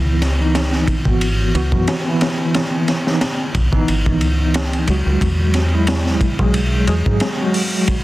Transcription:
Already playing: fingered electric bass C#2, tine electric piano E3 B3 E4
0.22 snare, ride
0.39 tine electric piano E3 B3 D#4
0.55 snare, ride
0.72 snare
0.87 fingered electric bass B1, kick, ride
1.05 fingered electric bass G#1, tine electric piano E3 B3 F#4, kick
1.21 ride
1.54 fingered electric bass C#2, tine electric piano E3 B3 F#4, ride
1.72 fingered electric bass F#2, kick
1.88 snare, ride
2.05 tine electric piano E3 B3 E4
2.21 snare, ride
2.54 snare, ride
2.88 snare, ride
3.07 tine electric piano E3 B3 D#4, snare
3.21 snare, ride
3.55 fingered electric bass B1, kick, ride
3.72 fingered electric bass G#1, tine electric piano E3 B3 D#4, kick
3.88 fingered electric bass G#1, ride
4.06 kick
4.21 fingered electric bass C#2, ride
4.54 snare, ride
4.73 ride
4.87 fingered electric bass C#2, tine electric piano F#3 G#3 F#4, ride
5.06 fingered electric bass C#2
5.21 fingered electric bass E2, kick, ride
5.54 snare, ride
5.72 tine electric piano F#3 G#3 E4
5.87 snare, ride
6.06 snare
6.21 fingered electric bass B1, kick, ride
6.39 fingered electric bass B1, tine electric piano F#3 G#3 G#4, kick
6.54 ride
6.87 fingered electric bass E2, tine electric piano F#3 G#3 G#4, ride
7.06 fingered electric bass G#2, kick
7.20 snare, ride
7.38 tine electric piano F#3 G#3 F#4
7.54 open hi-hat
7.88 kick, ride

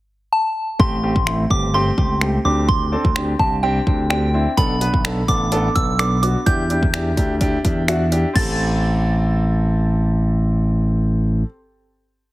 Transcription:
0.33 synth bell A5
0.79 slap bass A1, grand piano A3 C4 G4, synth bell C6, kick
1.03 grand piano A3 C4 G4
1.16 slap bass A1, kick
1.27 grand piano A3 C4 E4, finger snap
1.50 slap bass G1, grand piano A3 C4 G4, synth bell D6, kick
1.74 grand piano A3 C4 G4, synth bell C6
1.98 slap bass C#2, grand piano A3 C4 G4, kick
2.21 grand piano A3 C4 G4, finger snap
2.45 slap bass D2, grand piano C4 D4 G4, synth bell D6
2.68 synth bell C6, kick
2.92 grand piano C4 D4 A4
3.05 slap bass D2, kick
3.16 grand piano C4 D4 G4, finger snap
3.39 slap bass C2, grand piano C4 D4 G4, synth bell A5, kick
3.63 grand piano C4 D4 G4, synth bell G5
3.86 slap bass D2, grand piano C4 D4 G4, kick
4.10 grand piano C4 D4 G4, synth bell G5, finger snap
4.34 grand piano C4 D4 E4
4.57 slap bass B1, grand piano B3 D4 A4, synth bell B5, kick, closed hi-hat
4.81 grand piano B3 D4 B4, closed hi-hat
4.94 slap bass B1, kick
5.05 grand piano B3 D4 A4, finger snap, closed hi-hat
5.28 slap bass A1, grand piano B3 D4 A4, synth bell D6, kick, closed hi-hat
5.52 grand piano B3 D4 A4, closed hi-hat
5.75 slap bass B1, grand piano B3 D4 A4, synth bell E6, kick, closed hi-hat
5.99 grand piano B3 D4 A4, synth bell D6, finger snap, closed hi-hat
6.23 grand piano B3 D4 F#4, synth bell D6, closed hi-hat
6.46 slap bass E2, grand piano D4 E4 G4, synth bell G6, kick, closed hi-hat
6.70 grand piano D4 E4 G4, closed hi-hat
6.83 slap bass E2, kick
6.94 grand piano D4 E4 G4, finger snap, closed hi-hat
7.17 slap bass D2, grand piano D4 E4 G4, kick, closed hi-hat
7.41 grand piano D4 E4 G4, kick, closed hi-hat
7.64 slap bass E2, grand piano D4 E4 G4 G5, kick, closed hi-hat
7.88 grand piano D4 E4 F#4 E5, finger snap, closed hi-hat
8.12 grand piano D4 E4 G4, closed hi-hat
8.33 slap bass A1, grand piano C4 G4 A4, synth bell A6, kick, crash

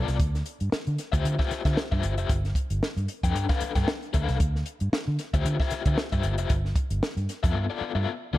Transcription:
Already playing: overdriven electric guitar B3 F4 A4 D5
0.08 fingered electric bass C2, snare, closed hi-hat
0.20 fingered electric bass D2, kick, closed hi-hat
0.35 snare, closed hi-hat
0.46 closed hi-hat
0.60 fingered electric bass G2, closed hi-hat
0.72 muted fingered electric bass stroke, snare
0.87 fingered electric bass D3, closed hi-hat
0.98 snare, closed hi-hat
1.12 fingered electric bass D2, overdriven electric guitar F4 G4 C5 E5, kick, closed hi-hat
1.25 fingered electric bass D3, closed hi-hat
1.39 overdriven electric guitar F4 G4 C5 E5, kick, snare
1.51 muted fingered electric bass stroke, snare, closed hi-hat
1.65 fingered electric bass D3, overdriven electric guitar F4 G4 C5 E5, kick, snare, closed hi-hat
1.77 snare
1.92 fingered electric bass G2, overdriven electric guitar F4 G4 C5 E5, kick
2.03 fingered electric bass G1, closed hi-hat
2.18 fingered electric bass F1, overdriven electric guitar F4 G4 C5 E5, closed hi-hat
2.29 fingered electric bass G1, kick, closed hi-hat
2.45 snare, closed hi-hat
2.55 kick, closed hi-hat
2.70 fingered electric bass G1, closed hi-hat
2.82 muted fingered electric bass stroke, snare
2.97 fingered electric bass G2, closed hi-hat
3.08 closed hi-hat
3.23 fingered electric bass F2, overdriven electric guitar D4 A4 B4 G5, kick, closed hi-hat
3.35 fingered electric bass G2, closed hi-hat
3.49 overdriven electric guitar D4 A4 B4 F5, kick, snare, closed hi-hat
3.60 muted fingered electric bass stroke, closed hi-hat
3.75 fingered electric bass G2, overdriven electric guitar D4 A4 B4 G5, kick, snare, closed hi-hat
3.88 snare
4.03 closed hi-hat
4.13 fingered electric bass D2, overdriven electric guitar D4 A4 B4 F5, kick, closed hi-hat
4.28 fingered electric bass C2, snare, closed hi-hat
4.40 fingered electric bass D2, kick, closed hi-hat
4.55 snare
4.66 closed hi-hat
4.80 fingered electric bass G2, closed hi-hat
4.93 muted fingered electric bass stroke, snare
5.08 fingered electric bass D3
5.19 snare, closed hi-hat
5.34 fingered electric bass D2, overdriven electric guitar F4 G4 C5 E5, kick, closed hi-hat
5.45 fingered electric bass D3, closed hi-hat
5.60 overdriven electric guitar F4 G4 C5 E5, kick, snare
5.70 muted fingered electric bass stroke, snare, closed hi-hat
5.85 fingered electric bass D3, overdriven electric guitar F4 G4 C5 E5, kick, closed hi-hat
5.98 snare
6.12 fingered electric bass G2, overdriven electric guitar F4 G4 C5 E5, kick, closed hi-hat
6.23 fingered electric bass G1, closed hi-hat
6.38 fingered electric bass F1, overdriven electric guitar F4 G4 C5 E5, closed hi-hat
6.50 fingered electric bass G1, kick, closed hi-hat
6.65 snare
6.76 kick, closed hi-hat
6.90 fingered electric bass G1, closed hi-hat
7.02 muted fingered electric bass stroke, snare
7.17 fingered electric bass G2, closed hi-hat
7.29 snare, closed hi-hat
7.43 fingered electric bass F2, overdriven electric guitar B3 F4 A4 E5, kick, closed hi-hat
7.55 fingered electric bass G2
7.70 overdriven electric guitar B3 F4 A4 D5
7.81 muted fingered electric bass stroke
7.95 fingered electric bass G2, overdriven electric guitar B3 F4 A4 E5
8.33 fingered electric bass D2, overdriven electric guitar B3 F4 A4 D5

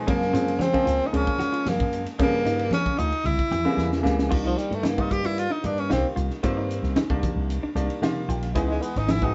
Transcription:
0.07 slap bass F#2, grand piano C#3 F3 G#3 A#3, tenor saxophone A#3, clean electric guitar C#4, kick, ride
0.22 snare
0.33 slap bass F#2, grand piano C#3 F3 G#3 C4, clean electric guitar F4, snare, hi-hat pedal, ride
0.48 ride
0.59 tenor saxophone C4, clean electric guitar C#4, snare, ride, high conga
0.73 grand piano C#3 F3 G#3 A#3, kick
0.85 slap bass C#2, clean electric guitar F4, hi-hat pedal, ride
1.06 tenor saxophone D#4
1.13 slap bass C#2, grand piano C#3 F3 G#3 A#3, tenor saxophone C#4, ride, muted conga
1.27 kick
1.39 slap bass A#2, clean electric guitar F#4, hi-hat pedal, ride, high conga
1.53 clean electric guitar F4, ride
1.66 slap bass F#2, tenor saxophone A#3, snare, ride, muted conga, high conga
1.80 slap bass F#2, kick
1.93 hi-hat pedal, ride
2.06 snare, ride
2.18 slap bass G2, grand piano C#3 F3 G3 A#3, clean electric guitar C#4, kick, ride, muted conga
2.23 tenor saxophone A#3
2.45 slap bass G2, clean electric guitar D#4, hi-hat pedal, ride, muted conga
2.59 ride
2.71 clean electric guitar C#4, tenor saxophone C#4, snare, ride, high conga
2.86 kick
2.98 slap bass D2, tenor saxophone D#4, clean electric guitar F4, hi-hat pedal, ride
3.12 ride
3.24 slap bass C2, tenor saxophone E4, ride, muted conga, low conga
3.39 kick
3.51 slap bass E2, clean electric guitar G4, hi-hat pedal, ride, high conga
3.65 grand piano C#3 E3 G3 A#3, clean electric guitar E4
3.77 slap bass E2, snare, muted conga, high conga
3.92 snare
4.03 slap bass C#2, grand piano C#3 E3 G3 A#3, snare, hi-hat pedal
4.19 snare
4.29 slap bass C2, grand piano D#3 G3 A#3 D4, clean electric guitar F4, kick, crash
4.44 tenor saxophone F3, clean electric guitar D#4
4.58 tenor saxophone G3, hi-hat pedal, ride
4.71 slap bass G2, tenor saxophone A3, ride
4.83 clean electric guitar D#4, snare, hi-hat pedal, ride, high conga
4.88 tenor saxophone A#3
4.97 slap bass G2, grand piano D#3 G3 A#3 F4, tenor saxophone D#4, kick
5.11 tenor saxophone G4, kick, hi-hat pedal, ride
5.23 slap bass G2, tenor saxophone E4, snare, ride
5.38 tenor saxophone F4, hi-hat pedal, ride, muted conga
5.50 clean electric guitar D4, tenor saxophone D#4
5.63 slap bass G2, grand piano D#3 G3 A#3 D#4, tenor saxophone D4, hi-hat pedal, ride, muted conga, high conga
5.78 tenor saxophone C#4, ride
5.90 slap bass C2, grand piano D#3 G3 A#3 F4, tenor saxophone C4, clean electric guitar D#4, snare, hi-hat pedal, ride, high conga
6.16 slap bass C2, clean electric guitar F4, hi-hat pedal, ride, muted conga
6.30 snare
6.43 slap bass G2, grand piano D#3 G3 A#3 C4, clean electric guitar F4, kick, hi-hat pedal, ride, muted conga
6.57 clean electric guitar D#4
6.71 hi-hat pedal, ride
6.83 slap bass C2, snare
6.96 clean electric guitar D#4, snare, hi-hat pedal, ride, high conga
7.09 slap bass C2, grand piano D#3 G3 A#3 D4, kick
7.23 kick, hi-hat pedal, ride, high conga, low conga
7.36 slap bass C2
7.50 hi-hat pedal, ride, muted conga
7.63 clean electric guitar D4
7.75 slap bass C2, grand piano D#3 G3 A#3 D4 D5, hi-hat pedal, ride, muted conga
7.90 ride
8.02 slap bass C3, grand piano D#3 G3 A#3 F4 F5, clean electric guitar D#4, snare, hi-hat pedal, ride, high conga
8.28 slap bass A#1, clean electric guitar F4, grand piano G5, hi-hat pedal, ride, muted conga
8.43 snare, ride
8.55 slap bass C#2, grand piano E3 G#3 B3 D#4, clean electric guitar E4, kick, hi-hat pedal, ride
8.68 tenor saxophone G#3, clean electric guitar D#4
8.81 tenor saxophone B3, hi-hat pedal, ride
8.96 slap bass G#1, tenor saxophone D#4, snare, ride
9.08 clean electric guitar D#4, tenor saxophone E4, snare, hi-hat pedal, ride, high conga
9.22 slap bass G#1, grand piano E3 G#3 B3 F#4, tenor saxophone D#4, kick

